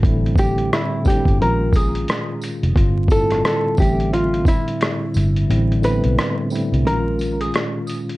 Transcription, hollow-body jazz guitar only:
0.39 0.69 G4 medium
0.74 1.04 E4 medium
1.07 1.37 G4 medium
1.42 1.76 A#4 medium
1.76 2.73 G#4 medium
3.12 3.42 A4 medium
3.46 3.76 A4 medium
3.80 4.10 G4 medium
4.14 4.44 F4 medium
4.48 5.46 E4 medium
5.85 6.35 B4 medium
6.87 7.41 A#4 medium
7.41 7.53 G#4 medium

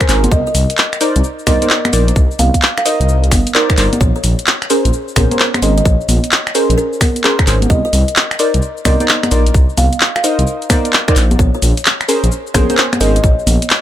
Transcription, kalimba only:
0.32 0.41 D#5 medium
0.47 0.52 D#5 medium
1.47 1.92 D#5 loud
2.39 2.56 F5 medium
2.78 2.84 F5 medium
2.86 3.52 D#5 medium
4.01 4.11 C#5 medium
4.16 4.21 C#5 medium
5.16 5.61 C#5 medium
5.62 5.72 D#5 medium
5.78 5.83 D#5 medium
5.86 6.02 C#5 medium
6.78 7.24 A#4 medium
7.70 7.80 D#5 medium
7.85 7.90 D#5 medium
8.85 9.30 D#5 loud
9.78 9.94 F5 loud
10.16 10.22 F5 medium
10.24 10.90 D#5 medium
11.40 11.49 C#5 medium
11.55 11.60 C#5 medium
12.54 12.99 C#5 medium
13.01 13.10 D#5 medium
13.16 13.21 D#5 medium
13.24 13.40 C#5 medium

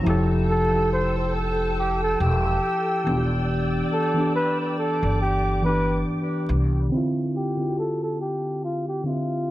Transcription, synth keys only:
0.03 0.65 F3 loud
0.03 0.66 E4 loud
0.07 0.67 G4 loud
0.07 0.69 A4 loud
0.70 2.25 F3 medium
0.70 2.26 E4 medium
0.75 2.28 G4 medium
0.75 2.29 A4 medium
3.04 4.04 E3 medium
3.04 4.05 B3 medium
3.08 4.06 D4 medium
3.08 3.15 F4 medium
3.17 4.11 G4 medium
4.14 5.50 E3 medium
4.14 5.51 B3 medium
4.18 5.52 D4 medium
4.18 5.53 G4 medium
5.62 6.81 E3 medium
5.62 6.82 B3 medium
5.67 6.84 D4 medium
5.67 6.85 G4 medium
6.89 7.51 D3 medium
6.89 7.53 C4 medium
6.94 7.54 E4 medium
6.94 7.55 F4 loud
7.57 8.93 D3 medium
7.57 8.94 C4 medium
7.61 8.95 E4 medium
7.61 7.66 F#4 medium
7.70 9.00 G4 medium
9.04 9.51 D3 medium
9.04 9.51 C4 medium
9.08 9.51 F4 medium
9.08 9.51 E5 medium

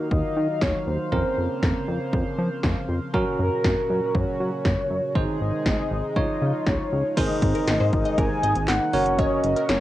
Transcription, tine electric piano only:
0.00 1.08 D#4 medium
0.00 1.08 F4 medium
0.00 1.08 F#4 medium
1.12 3.10 C4 medium
1.12 3.10 C#4 medium
1.12 3.10 A#4 medium
3.14 5.11 C#4 medium
3.14 5.11 F#4 medium
3.14 5.11 A#4 medium
5.15 6.14 D#4 medium
5.15 6.14 G#4 medium
5.15 6.14 C5 medium
6.16 7.15 D#4 medium
6.16 7.15 F4 medium
6.16 7.15 C#5 medium
7.17 8.90 D#4 medium
7.17 8.90 G#4 medium
7.17 8.90 A#4 medium
7.17 8.90 C5 medium
8.94 9.80 C#4 medium
8.94 9.80 F#4 medium
8.94 9.80 A#4 medium
8.94 9.80 C#5 medium

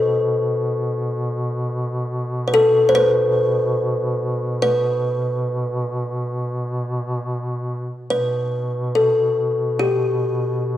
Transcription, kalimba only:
0.00 0.48 A4 medium
2.47 2.54 B4 medium
2.54 2.89 A4 medium
2.89 2.95 C5 medium
2.95 4.61 B4 loud
4.62 7.18 B4 medium
8.10 8.98 B4 medium
8.95 9.83 A4 medium
9.80 10.77 G4 medium

